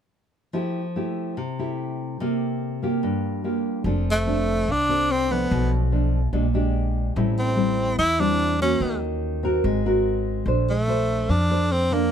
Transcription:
0.53 F3 A3 E4 G4
0.96 A3 E4 G4
1.37 C3
1.59 A3 E4 G4
2.20 C3 A#3 F4 G4
2.82 A#3 F4 G4
3.03 G2
3.44 A#3 F4 G4
3.84 F1 F3 C4 D4 A4
4.11 A3
4.27 C4 D4 A4
4.67 C2 C3
4.71 D4
4.89 C4 D4 A4
5.11 C4
5.31 F3 A3 B3 D4
5.51 B1 B2
5.92 F3 A3 D4
6.32 A#1 A#2 G#3 D4 G4
6.54 G#3 D4 G4
7.16 A1 A2 G3 C4 E4
7.39 C4
7.56 G3 C4 E4
7.98 E2 E3 E4
8.19 G3 C4 D4 E4
8.60 A#3 C#4 F#4
8.80 D#2 D#3
9.43 C4 F#4 A#4
9.64 G#1 G#3
9.85 C4 F#4 A#4
10.46 A#1 D4 A4 C5
10.70 A3
10.88 D4 A4 C5
11.29 F2 F3 D4
11.50 D4 A4 C5
11.72 C4
11.91 F3 A#3 D4

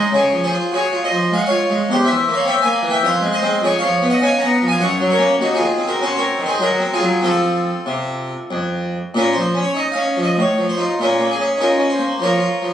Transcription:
Already playing: C5
0.11 C#3 G#4 C#5
0.33 F3
0.44 G#4 C5
0.51 F4
0.72 F#4 G#4 C#5
0.93 F4
1.04 C5 D#5
1.11 F3
1.32 G#3 F5
1.37 F#5
1.46 F4 C#5 F5
1.70 G#3
1.89 E2 C5
1.93 G4
2.05 E3 C5 E5
2.28 A#3
2.34 C#5 F5
2.45 C4 E5 G5
2.62 A#3 F5 G#5
2.82 E3
2.90 E5 G5
3.03 F2 C5 F5
3.21 G#3
3.33 C5 D#5
3.42 G#3 C4
3.61 F2 G#4 C#5
3.79 C#5 F5
3.83 F3
4.02 B3
4.10 D#5 F#5
4.21 C#4 G#5
4.25 F5
4.39 F#5 A#5
4.43 B3
4.62 F3
4.68 F5 G#5
4.79 F#2 C#5 F#5
5.00 F#3
5.11 A#4 C#5
5.18 A#3 C#4
5.39 D#2 D#4 F#4
5.55 F4 G#4
5.59 D#3
5.78 C4
5.87 F#4 A#4
6.01 C#4 F#4 C5
6.17 C4 A#4 C#5
6.39 D#3
6.46 G#4 C5
6.59 F#3 F#4 A#4
6.80 C4
6.93 F4 G#4
7.01 F#3
7.22 F3 C4 F4 A4
7.86 C3
8.51 F2
9.14 A#2 C#4 F4 A#4
9.33 F3 C5
9.55 C#4
9.63 C#5
9.74 D#4 D#5
9.92 C#4 F5
10.17 F3
10.23 D#5
10.37 A2 C#5
10.58 F3
10.69 C5
10.77 D#4 F4
10.99 A#2 C#4 F4 A#4
11.19 A#3
11.31 G#4
11.39 C#4
11.58 C#4 D#4 F4 A#4
11.78 C#4
11.90 C5
11.99 A#3
12.20 F3 F4 A#4 C#5
12.40 F4
12.62 F3

